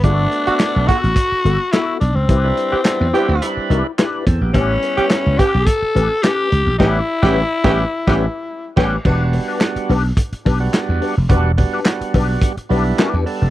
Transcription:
0.03 G1 A3 B3 D4 F#4 A4, kick, closed hi-hat
0.32 muted clean electric guitar stroke, closed hi-hat
0.47 B3 F#4 A4, muted slap bass stroke, closed hi-hat
0.60 snare, clap, closed hi-hat
0.75 B1, muted clean electric guitar stroke
0.88 B3 F#4 A4, kick, closed hi-hat
1.04 A1, muted clean electric guitar stroke, closed hi-hat
1.16 kick, closed hi-hat
1.31 muted clean electric guitar stroke, muted slap bass stroke
1.44 G1 B3 F#4 A4, closed hi-hat
1.60 muted clean electric guitar stroke
1.72 B3 E4 F#4 A4, snare, clap, closed hi-hat
2.00 B1 D4, muted clean electric guitar stroke, closed hi-hat
2.16 C#2 C4, muted clean electric guitar stroke
2.29 C2 E4 G4 B4, kick, closed hi-hat
2.44 G3 D4 E4 B4
2.57 muted clean electric guitar stroke, closed hi-hat
2.72 E4 G4 B4, muted slap bass stroke
2.85 G3 B3 D4 E4, muted clean electric guitar stroke, snare, clap, closed hi-hat
3.01 E2, muted clean electric guitar stroke
3.13 G3 B3 D4 E4 G4 B4, closed hi-hat
3.29 D2
3.42 G3 D4 E4 B4, closed hi-hat
3.57 muted clean electric guitar stroke, muted slap bass stroke
3.70 C2 E4 G4 B4, closed hi-hat
3.85 muted clean electric guitar stroke
3.98 D4 E4 G4 B4, snare, clap, closed hi-hat
4.27 E2 C4 A4, muted clean electric guitar stroke, kick, closed hi-hat
4.41 A#1 B3 G4, muted clean electric guitar stroke
4.54 A1 G3 B3 C4 C#4 E4 G4 B4, kick, closed hi-hat
4.61 C#4
4.83 muted clean electric guitar stroke, closed hi-hat
4.97 C#4 G4 B4, muted slap bass stroke, closed hi-hat
5.10 muted clean electric guitar stroke, snare, clap, closed hi-hat
5.26 C#2, muted clean electric guitar stroke
5.38 C#4 G4 B4, kick, closed hi-hat
5.54 B1, muted clean electric guitar stroke
5.66 A4, kick, closed hi-hat
5.82 muted clean electric guitar stroke, muted slap bass stroke
5.95 A1 C#4 G4 B4, closed hi-hat
6.10 muted clean electric guitar stroke
6.23 C#4 G4 B4, snare, clap, closed hi-hat
6.51 C#2, muted clean electric guitar stroke, closed hi-hat
6.66 A#1, muted clean electric guitar stroke
6.79 A1 G3 B3 C#4 E4 G4 B4, kick, snare, crash
7.22 A1 G3 B3 C#4 E4 G4 B4, kick, snare
7.64 A1 G3 B3 C#4 E4 G4 B4, kick, snare
8.07 A1 G3 B3 C#4 E4 G4 B4, kick, snare
8.76 A1 G3 B3 C#4 G4 B4, kick, snare, crash
9.05 E1 F#3 B3 D4 F#4 G4 B4, kick, crash
9.11 G3
9.33 muted clean electric guitar stroke, open hi-hat
9.48 D4 G4 B4
9.61 muted clean electric guitar stroke, snare, clap, closed hi-hat
9.76 muted slap bass stroke, muted clean electric guitar stroke, closed hi-hat
9.89 B1 D4 G4 B4, open hi-hat
10.05 muted clean electric guitar stroke
10.17 kick, closed hi-hat
10.33 muted slap bass stroke, muted clean electric guitar stroke, closed hi-hat
10.45 B1 D4 G4 B4, kick, open hi-hat
10.60 G3 B3 D4 F#4, muted clean electric guitar stroke
10.73 muted clean electric guitar stroke, snare, clap, closed hi-hat
10.89 E2
11.01 D4 G4 B4, open hi-hat
11.17 F1, muted clean electric guitar stroke
11.29 E1 G3 B3 D4 F#4 G4 B4, kick, closed hi-hat
11.58 G3 B3 D4 F#4, muted clean electric guitar stroke, kick, open hi-hat
11.73 D4 G4 B4
11.85 F#3 B3 D4 F#4, snare, clap, closed hi-hat
11.92 G3
12.01 muted slap bass stroke, muted clean electric guitar stroke, closed hi-hat
12.14 B1 D4 G4 B4, kick, open hi-hat
12.30 muted clean electric guitar stroke
12.42 kick, closed hi-hat
12.57 muted slap bass stroke, muted clean electric guitar stroke, closed hi-hat
12.69 B1 F#3 B3 D4 E4 G4 B4, open hi-hat
12.76 G3
12.85 muted clean electric guitar stroke
12.98 C#4 F#4 A#4, snare, clap, closed hi-hat
13.09 D4 G4 B4
13.14 E2
13.26 G3 B3 D4 A4, open hi-hat
13.42 F1, muted clean electric guitar stroke

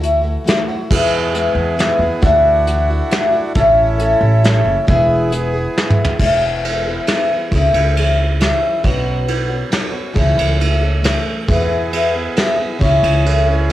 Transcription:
Already playing: D2
0.00 E3 A3 E4 F#4, closed hi-hat
0.22 A3 E4 F#4
0.44 E3 A3 E4 F#4, closed hi-hat
0.49 snare
0.68 A3 E4 F#4
0.90 E2 E3 G#3 B3 E4 G#4, kick, crash
1.33 G#3 B3 E4 G#4, closed hi-hat
1.55 E2
1.77 G#3 B3 E4 G#4, snare, closed hi-hat
1.99 E2 B3 E4 G#4
2.20 D2 D3 E3 A3 D4 E4 F#4, kick, closed hi-hat
2.66 E3 A3 E4 F#4, closed hi-hat
2.90 A3 E4 F#4
3.10 E3 A3 E4 F#4, snare, closed hi-hat
3.32 A3 E4 F#4
3.55 A1 A2 E3 A3 C#4 E4 A4, kick, closed hi-hat
3.98 A3 C#4 E4 A4, closed hi-hat
4.21 A1
4.43 A3 C#4 E4 A4, snare, closed hi-hat
4.65 F#1
4.87 E1 E3 G#3 B3 E4 G#4, kick, closed hi-hat
5.30 G#3 B3 E4 G#4, closed hi-hat
5.54 B3 E4 G#4
5.76 G#3 B3 E4 G#4, snare
5.90 mid tom
6.05 floor tom
6.18 E1 E3 G#3 B3 E4 G#4, kick, crash
6.63 G#3 B3 E4 G#4, ride
6.86 B3 E4 G#4
7.07 G#3 B3 E4, snare, ride
7.11 G#4
7.32 B3 E4 G#4
7.51 C#2 C#3 E3 C#4 E4 G#4, kick, ride
7.73 C#2, ride
7.96 E3 C#4 E4 G#4, ride
8.18 C#4 E4 G#4
8.39 E3 C#4 E4 G#4, snare, ride
8.83 B1 B2 F#3 B3 C#4 F#4, kick, ride
9.26 F#3 B3 C#4 F#4, ride
9.49 B3 C#4 F#4
9.70 F#3 B3 C#4 F#4, snare, ride
9.90 B3 C#4 F#4
10.13 C#2 C#3 E3 A3 C#4 G#4, kick, ride
10.37 C#2, ride
10.58 E3 A3 C#4 G#4, ride
10.81 A3 C#4 G#4
11.02 E3 A3 C#4 G#4, snare, ride
11.46 E2 E3 B3 E4 G#4, kick, ride
11.51 E4
11.91 E3 B3 E4 G#4, ride
12.13 B3 E4 G#4
12.35 E3 B3 E4 G#4, snare, ride
12.57 B3 E4 G#4
12.78 C#2 C#3 E3 C#4 E4 G#4, kick, ride
13.03 C#2, ride
13.24 E3 C#4 E4 G#4, ride
13.47 C#4 E4 G#4
13.68 E3

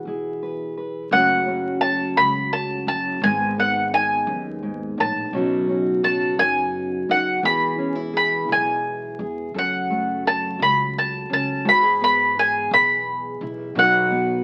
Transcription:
Already playing: E3 G#3 B3 F#4 B4 F#5
0.05 B1 E4 G#4
0.43 B4
0.77 B4
1.11 F#1 F#2 C#3 F#3 A3 C#4 F#4 C#5 F#5
1.48 C#4
1.81 C#5 A5
2.17 C#2 B5
2.53 A5
2.87 F#1 F#2 A5
3.21 G#1 G#2 D#3 G#3 B3 D#4 G#5
3.58 B3 F#5
3.93 D#4 G#5
4.27 D#2 F#2
4.63 G#2
4.98 A#1 A2 A5
5.33 B1 B2 C#3 F#3 B3 C#4 D#4 F#4
5.69 C#4
6.03 F#4 A5
6.38 F#2 G#5, muted steel-string acoustic guitar stroke
7.09 F#2 D#4 F#5
7.43 E2 B2 E3 G#3 B3 E4 G#4 B5
7.78 C#4
7.95 E4
8.13 G#4 B5
8.48 B1 G#5, muted steel-string acoustic guitar stroke
9.19 E2 G#4
9.54 F#2 C#3 F#3 A3 F#4 A4
9.58 F#5
9.90 A3
10.25 A4 A5
10.59 C#2 B5, muted steel-string acoustic guitar stroke
10.98 A5
11.30 C#2 C#4 A5
11.65 G#2 E3 G#3 B3 F#4 G#4 B5
11.82 G#4
12.02 B3 B5
12.37 G#4 G#5
12.71 B1 B5, muted steel-string acoustic guitar stroke
13.41 B1 E4
13.75 B1 B2 D#3 F#3 B3 D#4 F#4 F#5
14.12 B3

